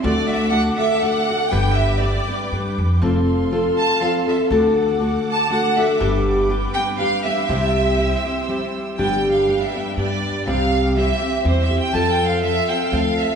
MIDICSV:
0, 0, Header, 1, 5, 480
1, 0, Start_track
1, 0, Tempo, 496689
1, 36, Time_signature, 3, 2, 24, 8
1, 9156, Tempo, 491400
1, 12945, End_track
2, 0, Start_track
2, 0, Title_t, "Violin section"
2, 0, Program_c, 0, 48
2, 25, Note_on_c, 0, 74, 77
2, 261, Note_off_c, 0, 74, 0
2, 273, Note_on_c, 0, 76, 80
2, 475, Note_on_c, 0, 78, 98
2, 502, Note_off_c, 0, 76, 0
2, 596, Note_off_c, 0, 78, 0
2, 743, Note_on_c, 0, 76, 84
2, 959, Note_off_c, 0, 76, 0
2, 960, Note_on_c, 0, 78, 89
2, 1440, Note_on_c, 0, 79, 84
2, 1450, Note_off_c, 0, 78, 0
2, 1686, Note_on_c, 0, 76, 82
2, 1705, Note_off_c, 0, 79, 0
2, 1916, Note_on_c, 0, 74, 73
2, 1928, Note_off_c, 0, 76, 0
2, 2414, Note_off_c, 0, 74, 0
2, 3647, Note_on_c, 0, 81, 97
2, 3863, Note_off_c, 0, 81, 0
2, 3878, Note_on_c, 0, 77, 72
2, 3995, Note_off_c, 0, 77, 0
2, 4146, Note_on_c, 0, 76, 64
2, 4246, Note_off_c, 0, 76, 0
2, 5125, Note_on_c, 0, 81, 86
2, 5323, Note_off_c, 0, 81, 0
2, 5324, Note_on_c, 0, 78, 84
2, 5558, Note_off_c, 0, 78, 0
2, 5580, Note_on_c, 0, 76, 74
2, 5802, Note_off_c, 0, 76, 0
2, 6511, Note_on_c, 0, 79, 95
2, 6615, Note_off_c, 0, 79, 0
2, 6752, Note_on_c, 0, 77, 89
2, 6984, Note_off_c, 0, 77, 0
2, 7003, Note_on_c, 0, 76, 77
2, 8413, Note_off_c, 0, 76, 0
2, 8678, Note_on_c, 0, 79, 78
2, 8978, Note_off_c, 0, 79, 0
2, 8995, Note_on_c, 0, 77, 67
2, 9294, Note_off_c, 0, 77, 0
2, 9316, Note_on_c, 0, 76, 65
2, 9635, Note_on_c, 0, 74, 74
2, 9639, Note_off_c, 0, 76, 0
2, 10087, Note_off_c, 0, 74, 0
2, 10131, Note_on_c, 0, 77, 93
2, 10575, Note_off_c, 0, 77, 0
2, 10624, Note_on_c, 0, 76, 81
2, 11059, Note_off_c, 0, 76, 0
2, 11108, Note_on_c, 0, 72, 77
2, 11254, Note_off_c, 0, 72, 0
2, 11257, Note_on_c, 0, 76, 84
2, 11409, Note_off_c, 0, 76, 0
2, 11421, Note_on_c, 0, 79, 85
2, 11560, Note_off_c, 0, 79, 0
2, 11566, Note_on_c, 0, 81, 91
2, 11713, Note_on_c, 0, 79, 95
2, 11724, Note_off_c, 0, 81, 0
2, 11877, Note_off_c, 0, 79, 0
2, 11877, Note_on_c, 0, 77, 83
2, 12039, Note_off_c, 0, 77, 0
2, 12044, Note_on_c, 0, 76, 91
2, 12278, Note_off_c, 0, 76, 0
2, 12298, Note_on_c, 0, 79, 82
2, 12522, Note_off_c, 0, 79, 0
2, 12541, Note_on_c, 0, 77, 88
2, 12784, Note_off_c, 0, 77, 0
2, 12786, Note_on_c, 0, 76, 80
2, 12945, Note_off_c, 0, 76, 0
2, 12945, End_track
3, 0, Start_track
3, 0, Title_t, "Violin section"
3, 0, Program_c, 1, 48
3, 61, Note_on_c, 1, 78, 70
3, 72, Note_on_c, 1, 69, 71
3, 73, Note_on_c, 1, 86, 80
3, 1460, Note_off_c, 1, 78, 0
3, 1466, Note_off_c, 1, 69, 0
3, 1467, Note_off_c, 1, 86, 0
3, 1468, Note_on_c, 1, 79, 67
3, 1474, Note_on_c, 1, 71, 70
3, 1480, Note_on_c, 1, 86, 74
3, 2904, Note_off_c, 1, 79, 0
3, 2906, Note_on_c, 1, 84, 68
3, 2907, Note_off_c, 1, 71, 0
3, 2910, Note_off_c, 1, 86, 0
3, 2922, Note_on_c, 1, 77, 65
3, 2926, Note_on_c, 1, 69, 69
3, 4348, Note_off_c, 1, 84, 0
3, 4356, Note_off_c, 1, 77, 0
3, 4366, Note_on_c, 1, 78, 65
3, 4370, Note_on_c, 1, 86, 72
3, 5777, Note_off_c, 1, 69, 0
3, 5786, Note_off_c, 1, 78, 0
3, 5815, Note_on_c, 1, 71, 79
3, 5816, Note_on_c, 1, 79, 69
3, 7199, Note_off_c, 1, 86, 0
3, 7219, Note_off_c, 1, 71, 0
3, 7253, Note_on_c, 1, 72, 72
3, 7257, Note_on_c, 1, 88, 75
3, 8659, Note_off_c, 1, 79, 0
3, 8679, Note_off_c, 1, 72, 0
3, 8681, Note_off_c, 1, 88, 0
3, 8684, Note_on_c, 1, 71, 57
3, 8684, Note_on_c, 1, 79, 76
3, 8688, Note_on_c, 1, 62, 58
3, 10112, Note_off_c, 1, 71, 0
3, 10112, Note_off_c, 1, 79, 0
3, 10114, Note_off_c, 1, 62, 0
3, 10128, Note_on_c, 1, 60, 72
3, 10136, Note_on_c, 1, 79, 66
3, 10148, Note_on_c, 1, 67, 64
3, 11552, Note_off_c, 1, 79, 0
3, 11558, Note_off_c, 1, 67, 0
3, 11567, Note_on_c, 1, 77, 76
3, 11573, Note_on_c, 1, 69, 62
3, 12945, Note_off_c, 1, 60, 0
3, 12945, Note_off_c, 1, 69, 0
3, 12945, Note_off_c, 1, 77, 0
3, 12945, End_track
4, 0, Start_track
4, 0, Title_t, "Nylon-string guitar"
4, 0, Program_c, 2, 24
4, 30, Note_on_c, 2, 57, 70
4, 32, Note_on_c, 2, 50, 73
4, 37, Note_on_c, 2, 62, 71
4, 41, Note_on_c, 2, 69, 75
4, 44, Note_on_c, 2, 66, 72
4, 485, Note_off_c, 2, 57, 0
4, 491, Note_off_c, 2, 66, 0
4, 496, Note_on_c, 2, 57, 55
4, 498, Note_off_c, 2, 62, 0
4, 498, Note_off_c, 2, 69, 0
4, 502, Note_on_c, 2, 62, 54
4, 503, Note_on_c, 2, 66, 59
4, 510, Note_on_c, 2, 69, 55
4, 741, Note_off_c, 2, 69, 0
4, 750, Note_off_c, 2, 66, 0
4, 751, Note_off_c, 2, 62, 0
4, 753, Note_off_c, 2, 57, 0
4, 753, Note_on_c, 2, 69, 43
4, 761, Note_on_c, 2, 66, 34
4, 763, Note_on_c, 2, 62, 30
4, 975, Note_off_c, 2, 62, 0
4, 979, Note_off_c, 2, 66, 0
4, 980, Note_off_c, 2, 69, 0
4, 982, Note_on_c, 2, 57, 58
4, 986, Note_on_c, 2, 62, 61
4, 991, Note_on_c, 2, 66, 60
4, 993, Note_on_c, 2, 69, 59
4, 1227, Note_off_c, 2, 69, 0
4, 1231, Note_off_c, 2, 66, 0
4, 1235, Note_off_c, 2, 57, 0
4, 1237, Note_off_c, 2, 62, 0
4, 1239, Note_on_c, 2, 69, 49
4, 1242, Note_on_c, 2, 66, 42
4, 1251, Note_on_c, 2, 62, 39
4, 1453, Note_off_c, 2, 62, 0
4, 1454, Note_on_c, 2, 43, 72
4, 1457, Note_on_c, 2, 59, 73
4, 1458, Note_off_c, 2, 50, 0
4, 1462, Note_on_c, 2, 50, 67
4, 1462, Note_on_c, 2, 55, 75
4, 1463, Note_off_c, 2, 69, 0
4, 1465, Note_off_c, 2, 66, 0
4, 1468, Note_on_c, 2, 71, 78
4, 1469, Note_on_c, 2, 62, 71
4, 1928, Note_off_c, 2, 55, 0
4, 1934, Note_off_c, 2, 59, 0
4, 1939, Note_off_c, 2, 43, 0
4, 1940, Note_on_c, 2, 55, 46
4, 1941, Note_off_c, 2, 62, 0
4, 1943, Note_off_c, 2, 50, 0
4, 1946, Note_off_c, 2, 71, 0
4, 1946, Note_on_c, 2, 59, 55
4, 1953, Note_on_c, 2, 62, 51
4, 1960, Note_on_c, 2, 71, 49
4, 2186, Note_off_c, 2, 71, 0
4, 2196, Note_off_c, 2, 62, 0
4, 2197, Note_off_c, 2, 55, 0
4, 2197, Note_on_c, 2, 71, 39
4, 2200, Note_off_c, 2, 59, 0
4, 2208, Note_on_c, 2, 62, 31
4, 2210, Note_on_c, 2, 59, 29
4, 2216, Note_on_c, 2, 55, 25
4, 2418, Note_off_c, 2, 55, 0
4, 2425, Note_off_c, 2, 59, 0
4, 2427, Note_off_c, 2, 71, 0
4, 2429, Note_on_c, 2, 55, 53
4, 2432, Note_off_c, 2, 62, 0
4, 2437, Note_on_c, 2, 59, 49
4, 2445, Note_on_c, 2, 62, 51
4, 2448, Note_on_c, 2, 71, 54
4, 2914, Note_off_c, 2, 55, 0
4, 2916, Note_off_c, 2, 59, 0
4, 2918, Note_on_c, 2, 53, 68
4, 2919, Note_off_c, 2, 71, 0
4, 2920, Note_on_c, 2, 60, 78
4, 2922, Note_off_c, 2, 62, 0
4, 2923, Note_on_c, 2, 69, 79
4, 2926, Note_on_c, 2, 65, 73
4, 3378, Note_off_c, 2, 53, 0
4, 3383, Note_off_c, 2, 60, 0
4, 3389, Note_off_c, 2, 65, 0
4, 3389, Note_on_c, 2, 53, 51
4, 3394, Note_on_c, 2, 60, 52
4, 3401, Note_on_c, 2, 65, 56
4, 3403, Note_off_c, 2, 69, 0
4, 3407, Note_on_c, 2, 69, 67
4, 3857, Note_off_c, 2, 53, 0
4, 3864, Note_off_c, 2, 60, 0
4, 3868, Note_off_c, 2, 65, 0
4, 3869, Note_on_c, 2, 53, 57
4, 3876, Note_on_c, 2, 60, 54
4, 3879, Note_off_c, 2, 69, 0
4, 3879, Note_on_c, 2, 65, 64
4, 3883, Note_on_c, 2, 69, 58
4, 4110, Note_off_c, 2, 69, 0
4, 4120, Note_off_c, 2, 65, 0
4, 4121, Note_on_c, 2, 69, 47
4, 4126, Note_off_c, 2, 60, 0
4, 4131, Note_on_c, 2, 65, 44
4, 4132, Note_off_c, 2, 53, 0
4, 4138, Note_on_c, 2, 60, 36
4, 4354, Note_on_c, 2, 57, 81
4, 4355, Note_off_c, 2, 69, 0
4, 4357, Note_on_c, 2, 50, 67
4, 4359, Note_off_c, 2, 65, 0
4, 4360, Note_off_c, 2, 60, 0
4, 4363, Note_on_c, 2, 66, 63
4, 4364, Note_on_c, 2, 62, 77
4, 4366, Note_on_c, 2, 69, 80
4, 4821, Note_off_c, 2, 57, 0
4, 4831, Note_off_c, 2, 66, 0
4, 4832, Note_on_c, 2, 57, 56
4, 4835, Note_off_c, 2, 62, 0
4, 4836, Note_off_c, 2, 69, 0
4, 4839, Note_on_c, 2, 62, 54
4, 4843, Note_on_c, 2, 66, 63
4, 4848, Note_on_c, 2, 69, 54
4, 5304, Note_off_c, 2, 57, 0
4, 5315, Note_off_c, 2, 66, 0
4, 5315, Note_on_c, 2, 57, 59
4, 5317, Note_off_c, 2, 62, 0
4, 5320, Note_on_c, 2, 62, 59
4, 5322, Note_off_c, 2, 69, 0
4, 5327, Note_on_c, 2, 66, 65
4, 5334, Note_on_c, 2, 69, 59
4, 5562, Note_off_c, 2, 69, 0
4, 5571, Note_off_c, 2, 57, 0
4, 5571, Note_off_c, 2, 66, 0
4, 5574, Note_off_c, 2, 62, 0
4, 5574, Note_on_c, 2, 69, 56
4, 5583, Note_on_c, 2, 66, 49
4, 5590, Note_on_c, 2, 62, 40
4, 5790, Note_off_c, 2, 62, 0
4, 5793, Note_on_c, 2, 43, 73
4, 5794, Note_off_c, 2, 50, 0
4, 5798, Note_off_c, 2, 66, 0
4, 5798, Note_on_c, 2, 50, 76
4, 5799, Note_off_c, 2, 69, 0
4, 5800, Note_on_c, 2, 55, 80
4, 5801, Note_on_c, 2, 62, 78
4, 5805, Note_on_c, 2, 59, 76
4, 5808, Note_on_c, 2, 67, 72
4, 6270, Note_off_c, 2, 59, 0
4, 6271, Note_off_c, 2, 43, 0
4, 6273, Note_off_c, 2, 50, 0
4, 6274, Note_off_c, 2, 55, 0
4, 6275, Note_off_c, 2, 62, 0
4, 6277, Note_on_c, 2, 55, 55
4, 6282, Note_on_c, 2, 59, 62
4, 6285, Note_on_c, 2, 62, 55
4, 6288, Note_off_c, 2, 67, 0
4, 6292, Note_on_c, 2, 67, 63
4, 6512, Note_off_c, 2, 67, 0
4, 6516, Note_off_c, 2, 62, 0
4, 6522, Note_off_c, 2, 59, 0
4, 6523, Note_on_c, 2, 67, 32
4, 6527, Note_off_c, 2, 55, 0
4, 6528, Note_on_c, 2, 62, 37
4, 6533, Note_on_c, 2, 59, 34
4, 6541, Note_on_c, 2, 55, 31
4, 6740, Note_off_c, 2, 55, 0
4, 6748, Note_off_c, 2, 59, 0
4, 6748, Note_off_c, 2, 67, 0
4, 6750, Note_off_c, 2, 62, 0
4, 6752, Note_on_c, 2, 55, 57
4, 6759, Note_on_c, 2, 59, 49
4, 6760, Note_on_c, 2, 62, 56
4, 6771, Note_on_c, 2, 67, 59
4, 6990, Note_off_c, 2, 67, 0
4, 6998, Note_off_c, 2, 62, 0
4, 7001, Note_off_c, 2, 59, 0
4, 7002, Note_off_c, 2, 55, 0
4, 7002, Note_on_c, 2, 67, 44
4, 7010, Note_on_c, 2, 62, 44
4, 7012, Note_on_c, 2, 59, 41
4, 7022, Note_on_c, 2, 55, 37
4, 7227, Note_off_c, 2, 55, 0
4, 7227, Note_off_c, 2, 67, 0
4, 7231, Note_off_c, 2, 62, 0
4, 7232, Note_off_c, 2, 59, 0
4, 7233, Note_on_c, 2, 48, 65
4, 7239, Note_on_c, 2, 55, 71
4, 7242, Note_on_c, 2, 60, 72
4, 7243, Note_on_c, 2, 67, 76
4, 7246, Note_on_c, 2, 64, 62
4, 7704, Note_off_c, 2, 60, 0
4, 7704, Note_off_c, 2, 64, 0
4, 7707, Note_off_c, 2, 55, 0
4, 7708, Note_off_c, 2, 48, 0
4, 7711, Note_on_c, 2, 55, 57
4, 7715, Note_on_c, 2, 60, 51
4, 7716, Note_on_c, 2, 64, 58
4, 7720, Note_off_c, 2, 67, 0
4, 7724, Note_on_c, 2, 67, 57
4, 7959, Note_off_c, 2, 67, 0
4, 7962, Note_off_c, 2, 55, 0
4, 7964, Note_off_c, 2, 60, 0
4, 7965, Note_off_c, 2, 64, 0
4, 7970, Note_on_c, 2, 67, 44
4, 7976, Note_on_c, 2, 64, 39
4, 7983, Note_on_c, 2, 60, 32
4, 8194, Note_off_c, 2, 60, 0
4, 8194, Note_on_c, 2, 55, 52
4, 8196, Note_off_c, 2, 67, 0
4, 8199, Note_off_c, 2, 64, 0
4, 8205, Note_on_c, 2, 60, 59
4, 8211, Note_on_c, 2, 64, 58
4, 8211, Note_on_c, 2, 67, 66
4, 8682, Note_on_c, 2, 43, 57
4, 8682, Note_on_c, 2, 50, 68
4, 8685, Note_off_c, 2, 55, 0
4, 8685, Note_off_c, 2, 64, 0
4, 8685, Note_off_c, 2, 67, 0
4, 8687, Note_off_c, 2, 60, 0
4, 8688, Note_on_c, 2, 62, 68
4, 8689, Note_on_c, 2, 55, 73
4, 8689, Note_on_c, 2, 67, 78
4, 8693, Note_on_c, 2, 59, 61
4, 9148, Note_off_c, 2, 59, 0
4, 9153, Note_off_c, 2, 55, 0
4, 9157, Note_on_c, 2, 55, 49
4, 9158, Note_off_c, 2, 62, 0
4, 9160, Note_on_c, 2, 59, 46
4, 9161, Note_off_c, 2, 43, 0
4, 9161, Note_off_c, 2, 50, 0
4, 9165, Note_off_c, 2, 67, 0
4, 9169, Note_on_c, 2, 62, 44
4, 9169, Note_on_c, 2, 67, 52
4, 9402, Note_off_c, 2, 67, 0
4, 9411, Note_off_c, 2, 62, 0
4, 9413, Note_off_c, 2, 55, 0
4, 9413, Note_on_c, 2, 67, 33
4, 9414, Note_off_c, 2, 59, 0
4, 9423, Note_on_c, 2, 62, 29
4, 9426, Note_on_c, 2, 59, 31
4, 9434, Note_on_c, 2, 55, 29
4, 9630, Note_off_c, 2, 55, 0
4, 9638, Note_off_c, 2, 59, 0
4, 9641, Note_off_c, 2, 67, 0
4, 9642, Note_on_c, 2, 55, 44
4, 9646, Note_off_c, 2, 62, 0
4, 9650, Note_on_c, 2, 59, 51
4, 9656, Note_on_c, 2, 62, 52
4, 9660, Note_on_c, 2, 67, 53
4, 10113, Note_off_c, 2, 55, 0
4, 10117, Note_on_c, 2, 48, 64
4, 10122, Note_off_c, 2, 67, 0
4, 10123, Note_off_c, 2, 59, 0
4, 10125, Note_on_c, 2, 55, 77
4, 10126, Note_on_c, 2, 60, 71
4, 10132, Note_off_c, 2, 62, 0
4, 10134, Note_on_c, 2, 67, 77
4, 10598, Note_off_c, 2, 55, 0
4, 10601, Note_off_c, 2, 48, 0
4, 10609, Note_off_c, 2, 67, 0
4, 10609, Note_on_c, 2, 55, 55
4, 10612, Note_off_c, 2, 60, 0
4, 10616, Note_on_c, 2, 60, 48
4, 10621, Note_on_c, 2, 64, 47
4, 10622, Note_on_c, 2, 67, 53
4, 10838, Note_off_c, 2, 67, 0
4, 10845, Note_off_c, 2, 64, 0
4, 10850, Note_on_c, 2, 67, 36
4, 10853, Note_off_c, 2, 60, 0
4, 10856, Note_on_c, 2, 64, 28
4, 10859, Note_off_c, 2, 55, 0
4, 10865, Note_on_c, 2, 60, 32
4, 11069, Note_off_c, 2, 60, 0
4, 11073, Note_off_c, 2, 67, 0
4, 11076, Note_on_c, 2, 55, 50
4, 11077, Note_off_c, 2, 64, 0
4, 11081, Note_on_c, 2, 60, 45
4, 11084, Note_on_c, 2, 67, 67
4, 11089, Note_on_c, 2, 64, 60
4, 11314, Note_off_c, 2, 67, 0
4, 11325, Note_off_c, 2, 64, 0
4, 11325, Note_on_c, 2, 67, 53
4, 11331, Note_off_c, 2, 55, 0
4, 11334, Note_off_c, 2, 60, 0
4, 11337, Note_on_c, 2, 64, 47
4, 11347, Note_on_c, 2, 60, 37
4, 11544, Note_off_c, 2, 60, 0
4, 11549, Note_on_c, 2, 53, 61
4, 11554, Note_off_c, 2, 64, 0
4, 11556, Note_off_c, 2, 67, 0
4, 11556, Note_on_c, 2, 60, 71
4, 11558, Note_on_c, 2, 65, 74
4, 11563, Note_on_c, 2, 69, 70
4, 12030, Note_off_c, 2, 53, 0
4, 12033, Note_off_c, 2, 60, 0
4, 12040, Note_off_c, 2, 65, 0
4, 12042, Note_off_c, 2, 69, 0
4, 12042, Note_on_c, 2, 53, 51
4, 12044, Note_on_c, 2, 60, 53
4, 12049, Note_on_c, 2, 65, 52
4, 12055, Note_on_c, 2, 69, 53
4, 12280, Note_off_c, 2, 69, 0
4, 12292, Note_off_c, 2, 65, 0
4, 12292, Note_on_c, 2, 69, 38
4, 12294, Note_off_c, 2, 53, 0
4, 12296, Note_off_c, 2, 60, 0
4, 12304, Note_on_c, 2, 65, 37
4, 12308, Note_on_c, 2, 60, 30
4, 12512, Note_off_c, 2, 65, 0
4, 12513, Note_off_c, 2, 60, 0
4, 12513, Note_off_c, 2, 69, 0
4, 12514, Note_on_c, 2, 53, 53
4, 12524, Note_on_c, 2, 65, 57
4, 12525, Note_on_c, 2, 60, 58
4, 12525, Note_on_c, 2, 69, 58
4, 12945, Note_off_c, 2, 53, 0
4, 12945, Note_off_c, 2, 60, 0
4, 12945, Note_off_c, 2, 65, 0
4, 12945, Note_off_c, 2, 69, 0
4, 12945, End_track
5, 0, Start_track
5, 0, Title_t, "Upright bass"
5, 0, Program_c, 3, 32
5, 40, Note_on_c, 3, 38, 105
5, 655, Note_off_c, 3, 38, 0
5, 1473, Note_on_c, 3, 31, 98
5, 2097, Note_off_c, 3, 31, 0
5, 2435, Note_on_c, 3, 43, 68
5, 2663, Note_off_c, 3, 43, 0
5, 2687, Note_on_c, 3, 41, 81
5, 2893, Note_off_c, 3, 41, 0
5, 2914, Note_on_c, 3, 29, 86
5, 3544, Note_off_c, 3, 29, 0
5, 4354, Note_on_c, 3, 38, 92
5, 4982, Note_off_c, 3, 38, 0
5, 5804, Note_on_c, 3, 31, 99
5, 6420, Note_off_c, 3, 31, 0
5, 7241, Note_on_c, 3, 36, 92
5, 7863, Note_off_c, 3, 36, 0
5, 8685, Note_on_c, 3, 31, 79
5, 9306, Note_off_c, 3, 31, 0
5, 9639, Note_on_c, 3, 43, 74
5, 9953, Note_off_c, 3, 43, 0
5, 10130, Note_on_c, 3, 36, 82
5, 10750, Note_off_c, 3, 36, 0
5, 11086, Note_on_c, 3, 40, 85
5, 11396, Note_off_c, 3, 40, 0
5, 11568, Note_on_c, 3, 41, 74
5, 12189, Note_off_c, 3, 41, 0
5, 12523, Note_on_c, 3, 38, 80
5, 12835, Note_off_c, 3, 38, 0
5, 12945, End_track
0, 0, End_of_file